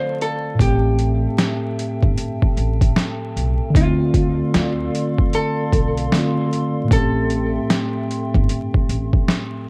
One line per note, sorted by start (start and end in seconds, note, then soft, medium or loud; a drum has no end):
0.00 0.53 D3 medium
0.00 0.55 A3 medium
0.00 0.57 C4 medium
0.00 0.59 F4 medium
0.00 3.71 A4 medium
0.00 0.18 C5 loud
0.00 0.56 D5 medium
0.00 0.56 F5 medium
0.00 3.71 A5 medium
0.21 0.62 A4 medium
0.21 closed hi-hat medium
0.55 3.69 A2 medium
0.59 1.25 A1 loud
0.59 3.71 A3 medium
0.59 1.35 G4 medium
0.59 3.72 E5 medium
0.59 3.72 G5 medium
0.59 kick loud
0.59 closed hi-hat medium
0.63 3.73 C4 medium
0.67 3.75 G4 medium
0.99 closed hi-hat medium
1.38 snare loud
1.38 closed hi-hat medium
1.79 closed hi-hat medium
2.03 2.15 G1 medium
2.03 kick medium
2.18 closed hi-hat medium
2.42 kick medium
2.57 2.90 A1 medium
2.57 closed hi-hat medium
2.81 kick medium
2.81 closed hi-hat medium
2.96 snare loud
2.96 closed hi-hat medium
3.36 3.57 B1 medium
3.36 closed hi-hat medium
3.70 6.06 D3 medium
3.74 4.40 D2 loud
3.74 6.08 A3 medium
3.74 5.39 F4 medium
3.74 9.69 A4 medium
3.74 6.88 D5 medium
3.74 6.88 F5 medium
3.74 9.69 C6 medium
3.74 kick loud
3.74 closed hi-hat medium
3.78 6.10 C4 medium
3.83 6.12 F4 medium
4.14 kick medium
4.14 closed hi-hat medium
4.54 4.87 D2 medium
4.54 snare loud
4.54 closed hi-hat medium
4.95 closed hi-hat medium
5.18 kick loud
5.33 6.48 A4 loud
5.33 closed hi-hat medium
5.73 6.05 B1 medium
5.73 kick medium
5.73 closed hi-hat medium
5.97 closed hi-hat medium
6.12 6.91 D3 medium
6.12 6.87 A3 soft
6.12 snare loud
6.12 closed hi-hat medium
6.16 6.91 C4 soft
6.16 6.94 F4 medium
6.53 closed hi-hat medium
6.84 9.69 A2 medium
6.88 7.56 A1 loud
6.88 9.69 A3 medium
6.88 9.69 E5 medium
6.88 9.69 G5 medium
6.88 kick loud
6.88 closed hi-hat loud
6.92 9.69 C4 medium
6.92 8.46 A4 loud
6.96 9.69 G4 medium
7.30 closed hi-hat medium
7.70 snare loud
7.70 closed hi-hat medium
8.11 closed hi-hat medium
8.34 8.47 G1 loud
8.34 kick medium
8.49 closed hi-hat medium
8.74 kick medium
8.89 9.21 A1 medium
8.89 closed hi-hat medium
9.13 kick medium
9.28 snare loud
9.28 closed hi-hat medium